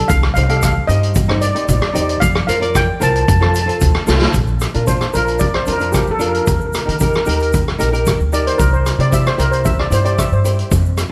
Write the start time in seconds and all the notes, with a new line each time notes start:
0.08 C2 F5, kick, closed hi-hat, shaker
0.23 cross-stick
0.34 C2 D#4 G4 C5 F5, closed hi-hat, shaker
0.44 F5
0.48 D#4 G4 A4 F5, closed hi-hat
0.57 F5
0.62 F5, kick, cross-stick, closed hi-hat, shaker
0.73 F5
0.87 G2 D#4 G4 C5 D#5, closed hi-hat, shaker
1.03 closed hi-hat
1.15 kick, closed hi-hat, shaker
1.28 D#4 G4 C5, cross-stick
1.41 D5, closed hi-hat, shaker
1.51 D#4 D5
1.55 G4 C5 D5, closed hi-hat
1.65 A1 D5, kick, closed hi-hat, shaker
1.73 D5
1.80 D5, cross-stick
1.89 D5
1.93 E2 D#4 G4 C5 D5, closed hi-hat, shaker
2.02 D5
2.09 D5, closed hi-hat
2.20 F2 F5, kick, closed hi-hat, shaker
2.35 cross-stick
2.47 F2 F4 A#4 C5 F5, closed hi-hat, shaker
2.60 F4 A#4 D5, closed hi-hat
2.75 G5, kick, cross-stick, closed hi-hat, shaker
3.00 C2 F4 A#4 C5 A5, closed hi-hat, shaker
3.10 A5
3.16 A5, closed hi-hat
3.23 A5
3.28 F2 A5, kick, closed hi-hat, shaker
3.40 F4 A4 C5 A5, cross-stick
3.49 A5
3.54 A5, closed hi-hat, shaker
3.62 F4 A5
3.67 A4 C5 A5, closed hi-hat
3.81 D2, kick, closed hi-hat, shaker
3.95 cross-stick
4.07 C2 F4 A4 C5, snare, shaker
4.22 snare
4.34 A#1, kick, closed hi-hat, shaker
4.47 shaker
4.60 cross-stick, closed hi-hat, shaker
4.74 A#2 D4 F4 A#4, closed hi-hat
4.87 D4 F4 C5, kick, closed hi-hat, shaker
5.01 cross-stick, shaker
5.14 A#1 D4 F4 A#4, closed hi-hat, shaker
5.27 closed hi-hat, shaker
5.39 D5, kick, closed hi-hat, shaker
5.54 C5, cross-stick
5.66 F2 D4 F4 A#4, closed hi-hat, shaker
5.73 A#4
5.80 D4 F4 A#4, closed hi-hat, shaker
5.92 G4, kick, cross-stick, closed hi-hat, shaker
6.07 F2, shaker
6.11 A4
6.19 D4 F4 A#4, closed hi-hat, shaker
6.28 A#4
6.35 A#4, closed hi-hat
6.45 D#2 A#4, kick, closed hi-hat, shaker
6.52 A#4
6.60 A#4, shaker
6.67 A#4
6.73 A#4, cross-stick, closed hi-hat, shaker
6.82 D#4 A#4
6.86 D#3 G4 A#4, closed hi-hat
6.96 D#4 A#4, shaker
7.01 G4 A#4, kick, closed hi-hat
7.12 A#4, cross-stick, shaker
7.19 A#4
7.26 D#2 D#4 G4 A#4, closed hi-hat, shaker
7.35 A#4
7.40 A#4, closed hi-hat, shaker
7.53 kick, closed hi-hat, shaker
7.68 cross-stick
7.78 A#1 D#4 G4 A#4, closed hi-hat, shaker
7.92 D#4 G4 A#4, closed hi-hat, shaker
8.06 kick, cross-stick, closed hi-hat, shaker
8.20 D2, shaker
8.32 D#4 G4 A#4 D5, closed hi-hat, shaker
8.47 C5, closed hi-hat
8.58 C2 A#4, kick, closed hi-hat, shaker
8.73 C5, shaker
8.86 cross-stick, closed hi-hat, shaker
8.98 C3 E4 G4 C5 D5, closed hi-hat
9.11 E4 G4 C5 E5, kick, closed hi-hat, shaker
9.26 C5, cross-stick, shaker
9.37 C2 E4 G4 A#4 C5, closed hi-hat, shaker
9.52 C5, closed hi-hat, shaker
9.65 E5, kick, closed hi-hat, shaker
9.79 D5, cross-stick
9.90 G2 E4 G4 C5, closed hi-hat, shaker
10.04 E4 G4 C5 D5, closed hi-hat, shaker
10.19 E5, kick, cross-stick, closed hi-hat, shaker
10.32 G2 C5, shaker
10.44 E4 G4 C5, closed hi-hat, shaker
10.59 closed hi-hat
10.71 F2, kick, closed hi-hat, shaker
10.85 shaker
10.97 cross-stick, closed hi-hat, shaker